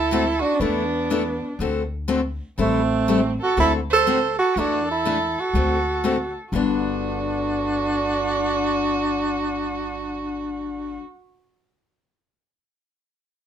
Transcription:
0.00 0.40 D2 medium
0.00 0.43 E4 medium
0.00 0.40 A4 medium
0.11 0.23 D3 medium
0.11 0.23 A3 medium
0.11 0.23 C4 medium
0.11 0.23 F#4 medium
0.11 0.23 A4 medium
0.39 0.62 D4 medium
0.39 0.56 F#4 medium
0.55 1.56 D4 medium
0.60 1.39 E2 medium
0.60 0.82 E3 medium
0.60 0.82 A3 medium
0.60 1.59 B3 medium
0.60 0.83 D4 medium
0.60 0.83 E4 medium
0.60 0.83 A4 medium
1.10 1.21 E3 medium
1.10 1.22 A3 medium
1.10 1.22 D4 medium
1.10 1.22 E4 medium
1.10 1.22 A4 medium
1.59 2.38 D2 medium
1.59 1.81 D3 medium
1.59 1.82 A3 medium
1.59 1.82 C4 medium
1.59 1.82 F#4 medium
1.59 1.82 A4 medium
2.08 2.20 D3 medium
2.08 2.20 A3 medium
2.08 2.20 C4 medium
2.08 2.20 F#4 medium
2.08 2.20 A4 medium
2.58 3.37 A1 medium
2.58 2.79 E3 medium
2.58 2.80 G3 medium
2.58 3.37 A3 medium
2.58 2.80 C4 medium
2.58 3.36 C4 medium
2.58 2.80 E4 medium
2.58 2.80 A4 medium
3.08 3.19 E3 medium
3.08 3.19 G3 medium
3.08 3.19 C4 medium
3.08 3.19 E4 medium
3.08 3.20 A4 medium
3.41 3.57 F#4 medium
3.41 3.56 A4 medium
3.57 4.36 D2 medium
3.57 3.78 D3 medium
3.57 3.79 A3 medium
3.57 3.79 C4 medium
3.57 3.73 E4 medium
3.57 3.79 F#4 medium
3.57 3.79 A4 medium
3.57 3.73 A4 medium
3.90 4.37 A4 loud
3.90 4.35 C5 medium
4.07 4.18 D3 medium
4.07 4.18 A3 medium
4.07 4.18 C4 medium
4.07 4.18 F#4 medium
4.07 4.18 A4 medium
4.39 4.61 F#4 medium
4.39 4.57 A4 medium
4.56 5.35 E2 medium
4.56 4.78 E3 medium
4.56 4.78 A3 medium
4.56 4.78 D4 medium
4.56 4.89 D4 medium
4.56 4.78 E4 medium
4.56 4.86 F#4 medium
4.56 4.79 A4 medium
4.86 5.37 A4 medium
4.91 5.42 E4 medium
5.05 5.16 E3 medium
5.05 5.17 A3 medium
5.05 5.17 D4 medium
5.05 5.17 E4 medium
5.05 5.17 A4 medium
5.37 6.37 F#4 medium
5.37 6.36 A4 medium
5.53 6.33 D2 medium
5.53 5.76 D3 medium
5.53 5.76 A3 medium
5.53 5.77 C4 medium
5.53 5.77 F#4 medium
5.53 5.77 A4 medium
6.04 6.15 D3 medium
6.04 6.15 A3 medium
6.04 6.16 C4 medium
6.04 6.16 F#4 medium
6.04 6.16 A4 medium
6.52 10.97 G1 medium
6.52 11.01 G2 medium
6.52 11.02 D3 medium
6.52 11.04 B3 medium
6.52 11.00 D4 medium
6.52 11.04 D4 medium
6.52 10.98 F#4 medium

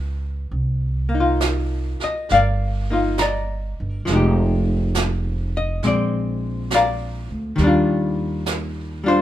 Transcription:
0.00 0.48 C#2 medium
0.00 0.51 B3 soft
0.00 0.52 F4 soft
0.51 1.97 C2 medium
0.51 brush sweep soft
1.09 2.33 A#3 soft
1.15 2.03 D#4 soft
1.20 2.92 F4 medium
1.41 snare soft
1.41 hi-hat pedal medium
2.00 2.29 D#5 medium
2.00 muted upright bass stroke soft
2.00 snare soft
2.29 3.75 G1 medium
2.29 2.91 F5 medium
2.29 brush sweep soft
2.29 snare soft
2.34 4.05 A#4 soft
2.34 2.90 D5 medium
2.90 3.21 A#3 soft
2.90 3.22 D#4 soft
2.90 3.19 F4 soft
3.18 4.05 D5 medium
3.18 4.04 A#5 medium
3.18 snare soft
3.18 hi-hat pedal soft
3.22 4.05 D#5 soft
3.80 4.06 G1 medium
4.05 5.79 F1 medium
4.05 5.82 F3 soft
4.05 brush sweep soft
4.05 snare soft
4.10 5.83 G#3 soft
4.10 5.86 D#4 soft
4.16 5.57 G4 soft
4.95 snare soft
4.95 hi-hat pedal medium
5.57 5.83 D#5 medium
5.83 7.26 A#1 medium
5.83 7.59 G#3 soft
5.83 7.59 C4 soft
5.83 brush sweep soft
5.83 snare soft
5.87 6.73 D5 medium
6.71 7.56 D5 medium
6.71 7.56 F5 medium
6.71 snare soft
6.71 hi-hat pedal soft
6.75 7.56 A#5 medium
7.30 7.57 D2 medium
7.56 9.22 D#2 medium
7.56 9.22 D#3 soft
7.56 9.02 G3 medium
7.56 brush sweep soft
7.56 snare soft
7.64 9.05 D4 soft
7.64 9.05 F4 medium
8.46 snare soft
8.46 hi-hat pedal medium
9.04 9.22 G3 soft
9.04 9.22 D4 soft
9.04 9.22 F4 soft
9.08 9.22 C5 medium

